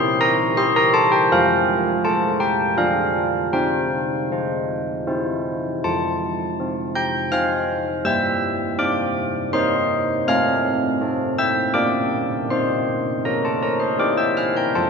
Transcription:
Already playing: E4 G4 C6
0.21 A#5
0.57 E4 G4 C6
0.76 A#5
0.94 A5
1.12 G5
1.32 F3 F5
2.05 F4 A4 A5
2.40 G5
2.77 D4 F4 A4 F5
3.53 C4 G5
4.32 F4 C5
5.07 C4 E4 C5
5.84 F3 A5
6.60 C4
6.95 G5 G6
7.32 C4 C5 F5 F6
8.05 G3 E5 E6
8.79 C4 D5 D6
9.53 C4 A#4 C5 C6
10.27 A3 F5 F6
11.01 C4 A4
11.38 E5 E6
11.74 A#3 D4 G4 D5 D6
12.50 C4 C5 C6
13.25 F4 A4 A#4 A#5
13.45 A4 A5
13.63 A#4 A#5
13.80 C5 C6
13.99 C4 E4 G4 D5 D6
14.17 E5 E6
14.37 F5 F6
14.57 G5 G6
14.75 F3 A5

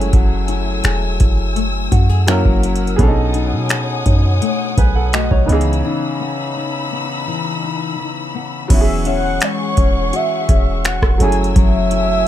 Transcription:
Already playing: F#1 F#3 G#3 A3 C#4 E4 F#4 G#4 G#5 E6
0.01 closed hi-hat
0.13 F#1 F#3 G#4, kick, closed hi-hat
0.48 E4, closed hi-hat
0.84 E1 G#4, finger snap, closed hi-hat
1.20 F#1 E4, kick, closed hi-hat
1.56 A3, closed hi-hat
1.92 F#2 F#4, kick, closed hi-hat
2.09 G#4
2.27 F#3 A#3 C#4 E4 A#4 F#5, finger snap, closed hi-hat
2.45 F#1, kick
2.63 E4, closed hi-hat
2.76 closed hi-hat
2.87 closed hi-hat
2.96 B1 B2 B3 C#4 G#4 C#5 F#5 G#5 D#6, kick, closed hi-hat
3.01 D4 A4
3.07 D#4
3.34 D#4, closed hi-hat
3.53 B2
3.69 G#4, finger snap, closed hi-hat
4.06 F#2 D#4, kick, closed hi-hat
4.41 A3, closed hi-hat
4.77 B1 G#4 B4 G#5, kick, closed hi-hat
4.96 A4 F#5
5.13 A3 F#4 D#5, finger snap, closed hi-hat
5.31 B1 C#5, kick
5.46 C#2 C#3 D#3 B3 C#4 D#4 B5 E6, closed hi-hat
5.50 E3 D#4 G#4
5.61 closed hi-hat
5.73 closed hi-hat
5.85 C#3 D#4
6.20 B3
6.56 D#4
6.92 B3
7.27 E3
7.63 D#4
7.99 E3
8.35 B3
8.68 E1 E3 F#3 B3 C#4 G#4 F#5 C#6, kick, closed hi-hat, crash
8.73 E4 F#4 E5
8.81 G#4
9.05 C#4 E5 F#5, closed hi-hat
9.41 G#3 C#5, finger snap, closed hi-hat
9.77 E1 C#4, kick, closed hi-hat
10.13 F#4 E5, closed hi-hat
10.49 E1 C#4 G#4, kick, closed hi-hat
10.85 F#4 F#5, finger snap, closed hi-hat
11.02 E1, kick, cross-stick
11.18 F#1 F#3 A3 C#4 G#5 E6, closed hi-hat
11.22 E4 G#4 G#5
11.32 closed hi-hat
11.44 closed hi-hat
11.56 F#1 F#3 E5, kick, closed hi-hat
11.91 E4, closed hi-hat

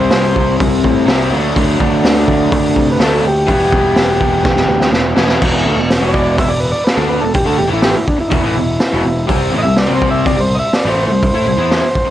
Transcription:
Already playing: C3 G3 C4 E4 C5
0.11 C2, snare, open hi-hat
0.36 C2, kick
0.60 C2, kick, open hi-hat
0.83 A2, kick
1.06 C2 C3 G3 C4, snare, open hi-hat
1.11 E4
1.30 D2 D3 F#3 A3
1.34 D4
1.56 D2, kick, open hi-hat
1.80 D2 D4, kick
2.03 D2, snare, open hi-hat
2.28 D2, kick
2.52 D2 D4, kick, open hi-hat
2.76 C3, kick
2.92 B4
2.99 D2 D3 F#3 A3 D4 A4, snare, open hi-hat
3.24 D2 G4
3.47 E1 E3 G3 B3, kick, open hi-hat
3.51 E4
3.72 E1, kick
3.96 E1, snare, open hi-hat
4.21 E1, kick
4.45 E1, kick, snare
4.57 snare
4.67 D2
4.81 snare
4.92 E1, snare
5.16 E1 G3 B3 E4, snare
5.20 E3
5.29 snare
5.40 E1 E2 B2 E3, kick, crash
5.66 D2 D3 A3
5.75 E1 E2 B2
5.90 snare, open hi-hat
6.00 E1 E2 B2 E3
6.08 C#5
6.13 D5, kick
6.38 E5, kick, open hi-hat
6.48 E1 E2 B2 D5
6.60 B4
6.71 D5
6.84 B4, snare, open hi-hat
6.96 D2 D3 A3 D4 A4
7.09 B4
7.21 E1 E2 B2 A4
7.34 G4, kick, open hi-hat
7.45 D2 D3 A3 A4
7.57 E1 E2 B2 G4
7.68 A2 E3 A3
7.72 A1 E4
7.82 G4, snare, open hi-hat
7.95 E4, muted picked electric bass stroke, muted overdriven electric guitar stroke
8.08 D4, kick
8.18 E4, muted overdriven electric guitar stroke, muted picked electric bass stroke
8.28 E1 E2 B2 D#4, kick, open hi-hat
8.32 E4
8.43 A1 A2 E3
8.56 E1 E2 B2
8.80 snare, open hi-hat
8.93 E1 E2 B2
9.04 E1 E2 B2
9.27 C2 C3 G3 C4, kick, open hi-hat
9.51 A1 A2 E3
9.58 D#5
9.63 C2 C3 G3 E5
9.76 D5, snare, open hi-hat
9.87 C2 C3 G3 C4
9.95 C5
10.02 kick
10.11 E5
10.26 D5, kick, open hi-hat
10.36 C2 C3 G3 C5
10.55 D#5
10.59 E5
10.73 D5, snare, open hi-hat
10.85 A1 A2 E3 A3
10.89 C5
11.02 B4
11.07 C2 C3 G3 C5
11.23 kick, open hi-hat
11.33 A2 A3 E4
11.45 C2 C3 G3
11.57 E2 E3 B3 E4
11.71 snare, open hi-hat
11.83 muted overdriven electric guitar stroke, muted picked electric bass stroke
11.95 kick
12.07 muted overdriven electric guitar stroke

